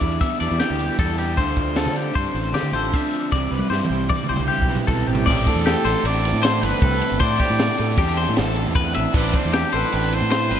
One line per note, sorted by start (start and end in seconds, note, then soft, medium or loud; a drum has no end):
0.00 0.20 E2 medium
0.00 0.20 E3 medium
0.00 0.99 E3 medium
0.00 0.21 G3 medium
0.00 1.17 G3 medium
0.00 0.21 B3 loud
0.00 0.40 D4 medium
0.00 0.22 E4 loud
0.00 0.40 E4 medium
0.00 0.81 G4 medium
0.00 0.21 D5 medium
0.00 kick medium
0.00 closed hi-hat medium
0.20 0.99 B2 medium
0.20 0.59 E3 medium
0.20 0.42 G3 medium
0.20 0.40 B3 medium
0.20 0.39 E4 medium
0.20 0.40 E5 medium
0.20 kick loud
0.20 closed hi-hat medium
0.40 0.50 E2 medium
0.40 0.60 G3 medium
0.40 0.60 B3 medium
0.40 0.51 D4 medium
0.40 0.62 E4 medium
0.40 0.60 D5 medium
0.40 closed hi-hat medium
0.51 0.60 E2 medium
0.51 1.38 E4 soft
0.60 0.98 E3 medium
0.60 0.81 G3 medium
0.60 0.79 B3 medium
0.60 1.78 D4 medium
0.60 0.79 E4 medium
0.60 0.99 G4 medium
0.60 snare medium
0.60 closed hi-hat medium
0.70 0.88 D2 medium
0.79 0.98 G3 medium
0.79 0.99 B3 medium
0.79 1.00 E4 medium
0.79 2.75 G4 soft
0.79 closed hi-hat medium
0.98 1.38 E2 medium
0.98 1.37 E3 medium
0.98 1.38 G3 loud
0.98 1.37 B3 loud
0.98 1.40 E4 loud
0.98 1.18 A4 medium
0.98 kick loud
0.98 closed hi-hat medium
1.18 1.57 G3 medium
1.18 1.38 G4 medium
1.18 snare soft
1.18 closed hi-hat medium
1.37 1.88 D2 medium
1.37 2.93 D3 medium
1.37 1.75 D3 medium
1.37 1.77 A3 medium
1.37 1.78 D4 medium
1.37 1.78 F4 medium
1.37 1.76 C5 medium
1.37 kick medium
1.37 closed hi-hat medium
1.56 3.12 F3 medium
1.56 kick medium
1.56 closed hi-hat soft
1.76 2.15 D3 medium
1.76 2.16 A3 medium
1.76 2.56 C4 medium
1.76 2.18 D4 medium
1.76 2.18 F4 loud
1.76 1.96 A4 medium
1.76 snare loud
1.76 closed hi-hat medium
1.86 2.05 D3 medium
1.96 2.16 G4 medium
1.96 closed hi-hat medium
2.15 2.25 G2 medium
2.15 2.94 A2 medium
2.15 2.53 D3 medium
2.15 2.36 A3 medium
2.15 2.36 D4 medium
2.15 2.33 F4 medium
2.15 2.54 C5 medium
2.15 kick medium
2.15 closed hi-hat medium
2.34 2.53 A1 medium
2.34 2.54 A3 medium
2.34 2.56 D4 medium
2.34 2.56 F4 medium
2.34 closed hi-hat medium
2.53 2.62 D3 medium
2.53 2.91 D3 medium
2.53 2.74 A3 medium
2.53 3.51 C4 medium
2.53 2.73 D4 medium
2.53 2.71 F4 medium
2.53 2.74 G4 medium
2.53 snare loud
2.53 closed hi-hat medium
2.63 2.72 D3 medium
2.72 2.92 A1 medium
2.72 2.93 A3 medium
2.72 2.95 D4 medium
2.72 2.94 F4 medium
2.72 3.31 A4 medium
2.72 2.94 C5 medium
2.72 closed hi-hat medium
2.93 3.31 D3 medium
2.93 3.31 A3 loud
2.93 3.33 D4 loud
2.93 3.32 F4 medium
2.93 3.32 E5 medium
2.93 kick loud
2.93 closed hi-hat medium
3.13 3.33 F3 medium
3.13 closed hi-hat medium
3.31 3.51 C2 medium
3.31 3.70 C3 medium
3.31 4.10 C3 medium
3.31 3.70 E3 medium
3.31 3.71 G3 medium
3.31 3.72 C4 medium
3.31 3.73 E4 medium
3.31 3.51 D5 medium
3.31 kick medium
3.31 snare soft
3.51 3.61 C2 medium
3.51 5.06 C4 medium
3.51 3.70 B4 medium
3.59 high tom medium
3.70 3.80 G2 medium
3.70 4.30 C3 medium
3.70 4.10 E3 loud
3.70 4.10 G3 loud
3.70 4.11 C4 medium
3.70 4.49 E4 medium
3.70 4.13 E4 medium
3.70 4.09 C5 medium
3.70 snare medium
3.85 mid tom medium
3.90 4.09 C2 medium
3.90 4.28 G4 medium
4.09 4.87 G2 medium
4.09 4.48 E3 medium
4.09 4.32 G3 medium
4.09 4.31 C4 medium
4.09 4.29 D5 medium
4.09 kick loud
4.09 mid tom medium
4.14 4.29 E4 medium
4.24 mid tom medium
4.29 4.39 C2 medium
4.29 4.51 C4 medium
4.29 4.51 E4 medium
4.29 5.24 G4 medium
4.29 4.49 C5 medium
4.33 4.50 G3 medium
4.33 mid tom medium
4.40 4.49 C2 medium
4.48 4.88 E3 medium
4.48 4.70 G3 medium
4.48 5.25 E4 medium
4.48 4.87 G4 medium
4.52 4.69 C4 medium
4.52 4.67 E4 medium
4.58 4.77 B1 medium
4.58 kick medium
4.68 4.88 G3 medium
4.68 4.89 C4 medium
4.68 4.89 E4 medium
4.68 5.25 B4 medium
4.75 floor tom medium
4.87 5.06 B1 medium
4.87 5.26 C3 medium
4.87 5.27 C3 medium
4.87 5.26 E3 medium
4.87 5.26 G3 loud
4.87 5.27 C4 loud
4.87 5.27 E4 loud
4.87 5.08 A4 medium
4.87 kick medium
4.87 floor tom medium
5.08 5.25 A1 medium
5.08 5.25 C4 medium
5.08 5.27 G4 medium
5.15 floor tom loud
5.26 5.45 A1 medium
5.26 6.82 A2 medium
5.26 6.03 A2 medium
5.26 6.04 E3 medium
5.26 6.05 A3 medium
5.26 6.05 C4 loud
5.26 6.06 E4 medium
5.26 5.49 G4 medium
5.26 5.65 D5 medium
5.26 kick medium
5.26 crash medium
5.30 6.07 C5 medium
5.47 6.05 D4 medium
5.47 6.08 A4 loud
5.47 kick medium
5.47 snare soft
5.47 ride medium
5.55 5.74 E2 medium
5.66 5.85 G4 medium
5.66 7.59 G4 medium
5.66 snare loud
5.66 ride loud
5.85 5.94 A1 loud
5.85 7.63 A3 medium
5.85 6.04 C5 medium
5.85 snare soft
5.85 ride medium
6.04 6.32 A1 loud
6.04 7.19 A2 medium
6.04 7.20 E3 medium
6.04 7.21 A3 medium
6.04 7.21 C4 medium
6.04 6.64 D4 medium
6.04 7.22 E4 medium
6.04 7.23 C5 medium
6.04 6.47 D5 loud
6.04 ride loud
6.25 7.43 E3 medium
6.25 snare soft
6.25 ride medium
6.33 6.61 A2 medium
6.43 7.43 C4 medium
6.43 6.63 C5 medium
6.43 6.65 C5 loud
6.43 snare loud
6.43 ride loud
6.63 6.72 G1 medium
6.63 7.02 D4 medium
6.63 6.82 B4 medium
6.63 7.20 B4 loud
6.63 snare soft
6.63 ride medium
6.82 7.00 C2 loud
6.82 7.20 A2 medium
6.82 7.20 A4 medium
6.82 kick loud
6.82 ride loud
7.02 7.39 D4 medium
7.02 ride medium
7.12 7.20 G1 medium
7.20 7.97 A2 medium
7.20 8.75 A2 medium
7.20 7.39 A2 loud
7.20 7.98 E3 loud
7.20 7.98 A3 loud
7.20 7.99 C4 medium
7.20 8.00 E4 loud
7.20 7.40 C5 medium
7.20 8.00 C5 loud
7.20 8.33 D5 loud
7.20 kick medium
7.20 ride medium
7.39 7.98 D4 medium
7.39 7.59 G4 medium
7.39 kick medium
7.39 ride medium
7.50 7.68 A2 loud
7.59 10.60 G4 medium
7.59 snare loud
7.59 ride loud
7.78 7.97 A2 medium
7.78 9.73 A3 medium
7.78 snare soft
7.78 ride medium
7.98 8.26 E2 loud
7.98 9.12 A2 medium
7.98 9.13 E3 medium
7.98 9.14 A3 medium
7.98 9.15 C4 medium
7.98 8.56 D4 medium
7.98 9.15 E4 medium
7.98 8.18 G4 medium
7.98 9.16 C5 medium
7.98 kick loud
7.98 snare soft
7.98 ride loud
8.17 9.38 E3 medium
8.17 8.37 C5 medium
8.17 ride medium
8.29 8.40 A2 loud
8.36 8.66 A1 loud
8.36 9.38 C4 medium
8.36 8.75 A4 medium
8.36 snare loud
8.36 ride loud
8.56 8.95 D4 medium
8.56 ride medium
8.68 8.95 E2 medium
8.75 9.13 A2 medium
8.75 8.94 B4 medium
8.75 kick loud
8.75 snare soft
8.75 ride loud
8.94 9.05 A1 medium
8.94 9.34 D4 medium
8.94 9.14 E5 medium
8.94 ride medium
9.13 9.33 A1 loud
9.13 9.91 A2 loud
9.13 10.60 A2 medium
9.13 9.92 E3 medium
9.13 9.93 A3 medium
9.13 9.94 C4 loud
9.13 9.94 E4 loud
9.13 9.37 B4 medium
9.13 9.94 C5 loud
9.13 9.53 D5 medium
9.13 kick loud
9.13 crash loud
9.33 9.55 D4 medium
9.33 9.57 C5 medium
9.33 kick medium
9.33 ride medium
9.45 9.63 E2 medium
9.53 9.93 D4 medium
9.53 9.73 G4 medium
9.53 9.77 G4 medium
9.53 snare loud
9.53 ride loud
9.72 9.83 A1 medium
9.72 10.60 A3 medium
9.72 10.16 B4 loud
9.72 9.92 C5 medium
9.72 ride medium
9.91 10.21 A1 medium
9.91 10.60 A2 medium
9.91 10.60 E3 medium
9.91 10.60 A3 medium
9.91 10.60 C4 medium
9.91 10.51 D4 medium
9.91 10.60 E4 medium
9.91 10.60 C5 medium
9.91 ride loud
10.12 10.60 E3 medium
10.12 10.60 C5 loud
10.12 ride medium
10.22 10.49 A2 loud
10.31 10.60 C4 medium
10.31 10.51 C5 medium
10.31 snare loud
10.31 ride loud
10.51 10.60 G1 medium
10.51 10.60 D4 medium
10.51 10.60 B4 medium
10.51 snare soft
10.51 ride medium